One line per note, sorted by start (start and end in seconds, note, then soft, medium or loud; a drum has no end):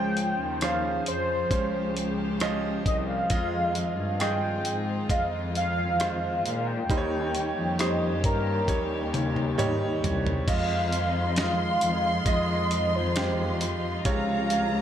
0.00 0.35 C#2 medium
0.00 1.03 C#3 medium
0.00 0.57 F3 medium
0.00 6.84 F3 soft
0.00 0.58 C#4 medium
0.00 3.27 C#4 medium
0.00 1.47 F4 medium
0.00 6.84 G#4 medium
0.00 0.58 C5 medium
0.00 3.28 C5 medium
0.00 0.58 G5 loud
0.17 closed hi-hat medium
0.40 1.03 D#2 medium
0.61 1.47 F3 medium
0.61 1.47 C#4 medium
0.61 1.47 C5 medium
0.61 1.04 F5 loud
0.61 cross-stick medium
0.61 closed hi-hat medium
1.06 1.49 F2 medium
1.06 1.93 C5 medium
1.06 closed hi-hat medium
1.51 2.81 C#2 medium
1.51 2.36 F3 medium
1.51 2.36 C#4 medium
1.51 3.28 G4 medium
1.51 2.36 C5 medium
1.51 kick medium
1.51 closed hi-hat medium
1.97 closed hi-hat medium
2.40 3.26 F3 medium
2.40 3.26 C#4 medium
2.40 3.26 D#5 medium
2.40 cross-stick medium
2.40 closed hi-hat medium
2.86 3.28 C2 medium
2.86 2.96 D#5 loud
2.86 kick medium
2.86 closed hi-hat medium
3.08 4.16 F5 loud
3.30 3.97 F2 medium
3.30 10.43 D#3 medium
3.30 4.16 G#3 medium
3.30 6.85 C4 medium
3.30 6.85 F4 medium
3.30 4.16 F4 medium
3.30 4.16 D#5 medium
3.30 kick medium
3.30 closed hi-hat medium
3.75 closed hi-hat medium
3.99 4.61 G2 medium
4.20 5.05 F4 medium
4.20 5.05 G#4 medium
4.20 5.05 D#5 medium
4.20 5.06 G5 medium
4.20 cross-stick medium
4.20 closed hi-hat medium
4.65 5.07 G#2 medium
4.65 closed hi-hat medium
5.09 6.40 F2 medium
5.09 5.95 G#3 medium
5.09 5.95 F4 medium
5.09 5.95 D#5 medium
5.09 5.25 F5 medium
5.09 kick medium
5.09 closed hi-hat loud
5.55 6.41 F5 loud
5.55 closed hi-hat medium
5.99 6.84 G#3 medium
5.99 6.85 F4 medium
5.99 6.85 C5 medium
5.99 cross-stick loud
5.99 closed hi-hat medium
6.44 6.86 A#2 medium
6.44 6.68 F5 medium
6.44 closed hi-hat medium
6.67 7.81 G5 loud
6.89 7.52 D#2 loud
6.89 8.20 D#3 medium
6.89 7.75 G3 medium
6.89 10.44 G3 medium
6.89 10.44 A#3 medium
6.89 10.44 C#4 medium
6.89 7.75 D#4 medium
6.89 10.44 G4 medium
6.89 6.96 C5 medium
6.89 kick medium
6.89 closed hi-hat medium
6.97 7.78 C#5 medium
7.35 closed hi-hat medium
7.57 8.24 F2 medium
7.79 8.64 G3 medium
7.79 8.64 D#4 medium
7.79 8.64 C5 medium
7.79 8.24 D#5 medium
7.79 cross-stick medium
7.79 closed hi-hat medium
8.24 8.65 G2 medium
8.24 9.10 A#4 medium
8.24 kick medium
8.24 closed hi-hat medium
8.68 9.98 D#2 loud
8.68 9.53 G3 medium
8.68 9.53 D#4 medium
8.68 9.54 C#5 medium
8.68 kick medium
8.68 closed hi-hat loud
8.68 high tom soft
9.14 closed hi-hat medium
9.14 mid tom medium
9.36 mid tom medium
9.58 10.43 G3 medium
9.58 10.43 D#4 medium
9.58 10.43 C#5 loud
9.58 closed hi-hat medium
9.58 mid tom medium
10.03 10.44 C2 loud
10.03 closed hi-hat medium
10.03 floor tom medium
10.27 floor tom medium
10.46 11.78 F2 loud
10.46 14.01 D#3 medium
10.46 14.01 F3 medium
10.46 14.01 G#3 medium
10.46 11.32 G#3 medium
10.46 14.82 D#4 medium
10.46 14.82 F4 medium
10.46 11.32 F4 medium
10.46 11.33 D#5 medium
10.46 11.34 F5 loud
10.46 14.02 C6 medium
10.46 kick loud
10.46 closed hi-hat medium
10.46 crash medium
10.92 closed hi-hat medium
11.36 12.22 G#3 medium
11.36 12.22 F4 medium
11.36 12.22 D#5 medium
11.36 12.30 F5 loud
11.36 snare medium
11.36 closed hi-hat medium
11.81 12.23 F2 medium
11.81 closed hi-hat medium
12.26 14.01 F2 loud
12.26 13.11 G#3 medium
12.26 13.12 F4 medium
12.26 13.12 D#5 medium
12.26 12.97 D#5 loud
12.26 kick medium
12.26 closed hi-hat medium
12.71 closed hi-hat medium
12.96 13.62 C5 medium
13.16 14.01 G#3 medium
13.16 14.01 F4 medium
13.16 14.01 G4 medium
13.16 snare medium
13.16 closed hi-hat medium
13.61 closed hi-hat medium
14.04 14.82 C#2 loud
14.04 14.82 C3 medium
14.04 14.82 C#3 medium
14.04 14.82 F3 medium
14.04 14.82 G#3 medium
14.04 14.82 F4 medium
14.04 14.82 C#5 medium
14.04 14.82 F5 loud
14.04 14.82 A#5 medium
14.04 kick loud
14.04 closed hi-hat medium
14.50 closed hi-hat medium